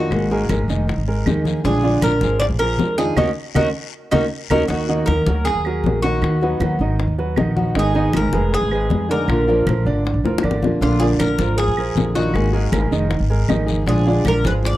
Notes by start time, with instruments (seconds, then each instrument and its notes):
Already playing: grand piano D#3 D#4 D#5, steel-string acoustic guitar A#3 D4 F4, cuban tres F#4
0.10 upright bass G#1, steel-string acoustic guitar G#3 A#3 D#4 G#4, high bongo, high conga, long guiro, claves
0.30 grand piano G#3 G#4 A#4, steel-string acoustic guitar A#3 D#4 G#4, high bongo, high conga
0.49 upright bass G#1, steel-string acoustic guitar G#3 A#3 D#4 G#4, grand piano G#3 G#4 A#4, high bongo, high conga, short guiro, claves
0.68 upright bass F1, grand piano D#3 D#4 D#5, high bongo, high conga, short guiro
0.88 muted steel-string acoustic guitar stroke, high bongo, high conga, long guiro
0.96 upright bass G#1
1.07 grand piano G#3 G#4 A#4, high bongo, high conga
1.26 upright bass D#2, grand piano D#3 D#4 D#5, steel-string acoustic guitar G#3 A#3 D#4 G#4, high bongo, low bongo, high conga, short guiro, claves
1.45 steel-string acoustic guitar A#3 D#4 G#4, high conga, short guiro
1.64 upright bass A#1, grand piano D3 D4 D5, steel-string acoustic guitar F3 G#3 D4 F4, cuban tres G#4, high bongo, high conga, long guiro
1.83 grand piano D3 D4 D5, steel-string acoustic guitar G#3 D4 F4, high bongo, high conga
2.02 upright bass A#1, steel-string acoustic guitar F3 G#3 D4 F4, cuban tres A#4, high bongo, high conga, short guiro, claves
2.21 upright bass G#1, grand piano F3 F4 G#4, high bongo, high conga, short guiro
2.40 cuban tres D5, muted steel-string acoustic guitar stroke, high bongo, high conga, long guiro
2.50 upright bass A#1
2.59 grand piano F3 F4 G#4, cuban tres A#4, high bongo, high conga, claves
2.78 upright bass F2, steel-string acoustic guitar F3 G#3 D4 F4, high bongo, low bongo, high conga, short guiro
2.97 grand piano D#3 D#4 D#5, steel-string acoustic guitar G#3 D4 F4, cuban tres G#4, short guiro
3.16 upright bass D#2, steel-string acoustic guitar A#3 C#4 D#4, grand piano C#4 D#4 F#4, cuban tres D#4 F#4 A#4, low bongo, low conga, long guiro, claves
3.54 upright bass D#2, steel-string acoustic guitar A#3 C#4 D#4, grand piano C#4 D#4 F#4, cuban tres D#4 F#4 A#4, low bongo, low conga, long guiro, claves
4.11 upright bass D#2, steel-string acoustic guitar A#3 C#4 D#4, grand piano C#4 D#4 F#4, cuban tres D#4 F#4 A#4, low bongo, low conga, long guiro, claves
4.50 upright bass D#2, steel-string acoustic guitar A#3 C#4 D#4, grand piano C#4 D#4 F#4, cuban tres D#4 F#4 A#4, low bongo, low conga, long guiro, claves
4.68 upright bass D#2, steel-string acoustic guitar D#3 A#3 D#4 F#4, grand piano D#3 D#4 D#5, cuban tres F#4, high bongo, high conga
4.88 grand piano D#3 D#4 D#5, steel-string acoustic guitar A#3 D#4 F#4, high bongo, high conga
5.06 upright bass D#2, steel-string acoustic guitar D#3 A#3, cuban tres A#4, high bongo, high conga, claves
5.26 upright bass D2, grand piano F#3 F#4 A#4, high bongo, high conga
5.45 cuban tres G#4, muted steel-string acoustic guitar stroke, high bongo, high conga
5.55 upright bass D#2
5.65 grand piano F#3 F#4 A#4, high bongo, high conga, claves
5.84 upright bass A#1, steel-string acoustic guitar D#3 A#3 D#4 F#4, high bongo, low bongo, high conga
6.02 grand piano D#3 D#4 D#5, steel-string acoustic guitar A#3 D#4 F#4, cuban tres F#4
6.22 upright bass D#2, steel-string acoustic guitar D#3 B3 D#4 F#4, high bongo, high conga, claves
6.42 grand piano F#3 F#4 B4, steel-string acoustic guitar B3 D#4 F#4, high bongo, high conga
6.60 upright bass D#2, steel-string acoustic guitar D#3 B3 D#4 F#4, grand piano F#3 F#4 B4, high bongo, high conga, claves
6.79 upright bass G#1, grand piano D#3 D#4 D#5, high bongo, high conga
6.99 muted steel-string acoustic guitar stroke, high bongo, high conga
7.07 upright bass D#2
7.18 grand piano F#3 F#4 B4, high bongo, high conga
7.36 upright bass A#1, steel-string acoustic guitar D#3 B3 D#4 F#4, grand piano D#3 D#4 D#5, high bongo, low bongo, high conga, claves
7.56 steel-string acoustic guitar B3 D#4 F#4, high conga
7.75 upright bass G#1, steel-string acoustic guitar D#3 G#3 B3 D#4 G#4, grand piano D#3 D#4 D#5, high bongo, high conga
7.79 cuban tres G#4
7.94 grand piano D#3 D#4 D#5, steel-string acoustic guitar G#3 B3 D#4 G#4, high bongo, high conga
8.13 upright bass G#1, steel-string acoustic guitar G#3 B3 G#4, cuban tres A#4, high bongo, high conga, claves
8.32 upright bass F1, grand piano G#3 G#4 B4, high bongo, high conga
8.53 cuban tres G#4, muted steel-string acoustic guitar stroke, high bongo, high conga
8.61 upright bass G#1
8.71 grand piano G#3 G#4 B4, high bongo, high conga, claves
8.90 upright bass F2, steel-string acoustic guitar G#3 B3 D#4 G#4, high bongo, low bongo, high conga
9.09 grand piano D3 D4 D5, steel-string acoustic guitar G#3 B3 D#4 G#4, cuban tres A#4
9.28 upright bass A#1, steel-string acoustic guitar D3 A#3 D4 F4, high bongo, high conga, claves
9.47 grand piano F3 F4 A#4, steel-string acoustic guitar A#3 D4 F4, high bongo, high conga
9.66 upright bass A#1, steel-string acoustic guitar D3 A#3 D4 F4, grand piano F3 F4 A#4, high bongo, high conga, claves
9.85 upright bass G#1, grand piano D3 D4 D5, high bongo, high conga
10.05 muted steel-string acoustic guitar stroke, high bongo, high conga
10.14 upright bass A#1
10.24 upright bass F1, grand piano F3 F4 A#4, high bongo, high conga
10.38 high bongo
10.43 upright bass G#1, steel-string acoustic guitar D3 A#3 D4 F4, grand piano D3 D4 D5, high conga, claves
10.51 low bongo
10.62 upright bass A#1, steel-string acoustic guitar A#3 D4 F4, low bongo, high conga
10.81 upright bass A#1, steel-string acoustic guitar D3 A#3 D4 F4, grand piano D3 D4 D5, cuban tres F4, high bongo, high conga, long guiro
10.99 grand piano D3 D4 D5, steel-string acoustic guitar A#3 D4 F4, cuban tres G#4, high bongo, high conga
11.19 upright bass A#1, steel-string acoustic guitar D3 A#3 D4 F4, cuban tres A#4, high bongo, high conga, short guiro, claves
11.39 upright bass G#1, grand piano F3 F4 A#4, high conga, short guiro
11.57 cuban tres G#4, muted steel-string acoustic guitar stroke, high bongo, high conga, long guiro
11.68 upright bass A#1
11.77 grand piano F3 F4 A#4, high bongo, high conga, claves
11.95 upright bass A#1, steel-string acoustic guitar D3 A#3 D4 F4, high bongo, low bongo, high conga, short guiro
12.15 grand piano D#3 D#4 D#5, steel-string acoustic guitar A#3 D4 F4, cuban tres F#4, high conga, short guiro
12.33 upright bass G#1, steel-string acoustic guitar G#3 A#3 D#4 G#4, high bongo, high conga, long guiro, claves
12.53 grand piano G#3 G#4 A#4, steel-string acoustic guitar A#3 D#4 G#4, high bongo, high conga
12.72 upright bass G#1, steel-string acoustic guitar G#3 A#3 D#4 G#4, grand piano G#3 G#4 A#4, high bongo, high conga, short guiro, claves
12.91 upright bass F1, grand piano D#3 D#4 D#5, high bongo, high conga, short guiro
13.10 muted steel-string acoustic guitar stroke, high bongo, high conga, long guiro
13.20 upright bass G#1
13.30 grand piano G#3 G#4 A#4, high bongo, high conga
13.48 upright bass G#1, grand piano D#3 D#4 D#5, steel-string acoustic guitar G#3 A#3 D#4 G#4, high bongo, low bongo, high conga, short guiro, claves
13.66 steel-string acoustic guitar A#3 D#4 G#4, high conga, short guiro
13.86 upright bass A#1, grand piano D3 D4 D5, steel-string acoustic guitar F3 G#3 D4 F4, cuban tres G#4, high bongo, high conga, long guiro
14.06 grand piano D3 D4 D5, steel-string acoustic guitar G#3 D4 F4, high bongo, high conga
14.25 upright bass A#1, steel-string acoustic guitar F3 G#3 D4 F4, cuban tres A#4, high bongo, high conga, short guiro, claves
14.44 upright bass G#1, grand piano F3 F4 G#4, cuban tres B4, high bongo, high conga, short guiro
14.63 cuban tres D5, muted steel-string acoustic guitar stroke, high bongo, high conga, long guiro
14.73 upright bass A#1